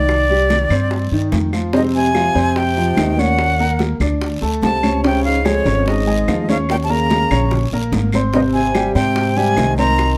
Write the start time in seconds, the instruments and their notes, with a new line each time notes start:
Already playing: upright bass C2, grand piano D#3 D#4, flute D5
0.08 high bongo, long guiro, claves
0.29 grand piano G3 G4, high bongo, high conga
0.50 grand piano D#3 D#4, high bongo, high conga, short guiro
0.70 upright bass G2, grand piano C4 C5, high bongo, high conga, short guiro, claves
0.91 high bongo, high conga, long guiro
1.12 upright bass G2, grand piano D#3 D#4, high conga
1.32 upright bass F2, high bongo, low bongo, high conga, short guiro
1.53 grand piano F3 F4, high bongo, high conga, short guiro, claves
1.73 trombone G#2, grand piano C3 C4 C5, flute D#5, high bongo, high conga, long guiro
1.94 trombone C3, flute G#5, high bongo, high conga
2.14 grand piano F3 F4 F5, high bongo, high conga, short guiro, claves
2.35 upright bass F2, grand piano C4 C5 C6, high bongo, high conga, short guiro
2.56 trombone C3, flute G5, high bongo, high conga, long guiro
2.76 grand piano F3 F4 F5, high conga
2.97 upright bass D#2, grand piano D#3 D#4 D#5, high bongo, low bongo, high conga, short guiro, claves
3.17 trombone A#2, grand piano C#4 C#5 C#6, flute F#5, high bongo, high conga, short guiro
3.38 high bongo, high conga, long guiro, claves
3.59 grand piano A#3 A#4 A#5, high bongo, high conga
3.79 high bongo, high conga, short guiro
4.00 upright bass D2, grand piano D4 D5 D6, high bongo, high conga, low conga, short guiro, claves
4.22 high bongo, high conga, long guiro
4.41 upright bass D2, grand piano A3 A4 A5, high conga
4.62 upright bass C#2, trombone C3, flute A5, high bongo, low bongo, high conga, short guiro
4.83 grand piano C#4 C#5 C#6, high bongo, high conga, short guiro, claves
5.03 trombone C3, grand piano C#3 C#4 C#5, flute G5, high bongo, long guiro
5.24 trombone G#2, flute F5, high bongo, high conga
5.45 trombone F2, grand piano G#3 G#4 G#5, flute C#5, high bongo, high conga, short guiro, claves
5.65 upright bass G#1, grand piano C#4 C#5 C#6, high bongo, high conga, short guiro
5.86 trombone G#2, flute D#5, high bongo, high conga, long guiro
6.07 grand piano G#3 G#4 G#5, high conga
6.28 upright bass D#2, grand piano F3 F4 F5, high bongo, low bongo, high conga, short guiro, claves
6.48 trombone G#2, grand piano C#4 C#5 C#6, flute F5, high bongo, high conga, short guiro
6.69 trombone A#2, flute G5, high bongo, long guiro, claves
6.83 trombone C3, flute A5
6.90 trombone C#3, grand piano A#3 A#4 A#5, flute A#5, high bongo, high conga
7.10 high bongo, high conga, short guiro
7.31 upright bass A#1, grand piano C#4 C#5 C#6, high bongo, high conga, low conga, short guiro, claves
7.51 high bongo, high conga, low conga, long guiro
7.72 upright bass A#1, grand piano A#3 A#4 A#5, high conga
7.92 upright bass G#1, high bongo, low bongo, high conga, short guiro
8.12 grand piano C4 C5 C6, high bongo, high conga, short guiro, claves
8.33 trombone G2, grand piano C3 C4 C5, flute D#5, high bongo, high conga, long guiro
8.53 trombone C3, flute G#5, high bongo, high conga
8.74 grand piano G3 G4 G5, high bongo, high conga, short guiro, claves
8.95 upright bass G#2, trombone C3, grand piano C4 C5 C6, flute G5, high bongo, high conga, short guiro
9.16 high bongo, high conga, long guiro
9.36 trombone C3, grand piano G3 G4 G5, flute G#5, high conga
9.57 upright bass C2, grand piano D#3 D#4 D#5, high bongo, low bongo, high conga, short guiro, claves
9.77 trombone D#3, grand piano C4 C5 C6, flute A#5, high bongo, high conga, short guiro
9.98 high bongo, long guiro, claves